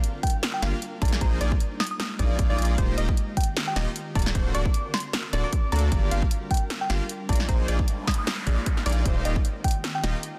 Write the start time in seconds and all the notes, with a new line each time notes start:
Already playing: G3 D4 F4 A#4
0.04 closed hi-hat
0.23 G5, kick, closed hi-hat
0.27 closed hi-hat
0.30 closed hi-hat
0.43 snare, closed hi-hat
0.54 G5
0.62 G1 A#3 D4 F4 G4 F5, snare, closed hi-hat
0.82 closed hi-hat
1.02 A#1 G#3 A#3 D#4 F4 G#4 D5 A#5, kick, closed hi-hat
1.05 closed hi-hat
1.08 closed hi-hat
1.12 snare
1.21 A#1 A#3 D#4 F4 G#4 C5 A#5, kick, closed hi-hat
1.41 A#1 A#3 D#4 F4 G#4 D5, closed hi-hat
1.52 kick
1.60 closed hi-hat
1.80 D#6, snare, closed hi-hat
1.84 closed hi-hat
1.87 closed hi-hat
1.91 D#6
2.00 snare, closed hi-hat
2.19 A#1 A#3 D#4 F4 G#4 D5, kick, closed hi-hat
2.39 A#1 A#3 D#4 F4 G#4 D5, kick, closed hi-hat
2.50 A#1 A#3 D#4 F4 G#4 D5
2.58 A#1 A#3 D#4 F4 G#4 D5, closed hi-hat
2.62 closed hi-hat
2.65 closed hi-hat
2.78 D#1 D#3 A#3 C4 D#4 F4 G4 C5, kick, closed hi-hat
2.98 D#1 A#3 D#4 F4 G4 D#5, closed hi-hat
3.09 kick
3.17 closed hi-hat
3.37 G5, kick, closed hi-hat
3.41 closed hi-hat
3.44 closed hi-hat
3.57 snare, closed hi-hat
3.68 G5
3.76 D#1 A#3 D#4 F4 G4 D#5, snare, closed hi-hat
3.96 closed hi-hat
4.15 D1 D3 A#3 D4 F#4 A4 A#4 D5 A#5, kick, closed hi-hat
4.19 closed hi-hat
4.22 closed hi-hat
4.26 snare
4.35 D1 A#3 D4 F#4 A4 C5, kick, closed hi-hat
4.55 D1 A#3 D4 F#4 A4 D5 D6, closed hi-hat
4.66 kick
4.74 closed hi-hat
4.94 C6, snare, closed hi-hat
4.97 closed hi-hat
5.00 closed hi-hat
5.13 snare, closed hi-hat
5.33 D1 A#3 D4 F#4 A4 D5, closed hi-hat
5.44 D6
5.53 kick, closed hi-hat
5.72 D2 A#3 D4 F#4 A4 D5 A#5, closed hi-hat
5.76 closed hi-hat
5.79 closed hi-hat
5.92 G1 G3 A#3 D4 F4 G4 A#4 D5, kick, closed hi-hat
6.11 G1 A#3 D4 F4 G4 F5, closed hi-hat
6.22 kick
6.31 closed hi-hat
6.51 G5, kick, closed hi-hat
6.54 closed hi-hat
6.57 closed hi-hat
6.70 snare, closed hi-hat
6.81 G5
6.90 G1 A#3 D4 F4 G4 F5, snare, closed hi-hat
7.09 closed hi-hat
7.29 A#1 G#3 A#3 D#4 F4 G#4 D5 A#5, kick, closed hi-hat
7.33 closed hi-hat
7.36 closed hi-hat
7.40 snare
7.49 A#1 A#3 D#4 F4 G#4 C5 A#5, kick, closed hi-hat, noise sweep
7.68 A#1 A#3 D#4 F4 G#4 D5, closed hi-hat
7.79 kick
7.88 closed hi-hat
8.07 D#6, kick, snare, closed hi-hat
8.11 closed hi-hat
8.14 closed hi-hat
8.18 D#6
8.27 D#6, snare, closed hi-hat
8.47 A#1 A#3 D#4 F4 G#4 D5, kick, closed hi-hat
8.66 kick, closed hi-hat
8.77 snare
8.86 A#1 A#3 D#4 F4 G#4 D5, closed hi-hat, open hi-hat
8.92 closed hi-hat
9.06 D#1 D#3 A#3 C4 D#4 F4 G4 C5, kick, closed hi-hat
9.25 D#1 A#3 D#4 F4 G4 D#5, closed hi-hat
9.36 kick
9.45 closed hi-hat
9.64 G5, kick, closed hi-hat
9.68 closed hi-hat
9.71 closed hi-hat
9.84 snare, closed hi-hat
9.95 G5
10.04 D#1 A#3 D#4 F4 G4 D#5, snare, closed hi-hat
10.23 closed hi-hat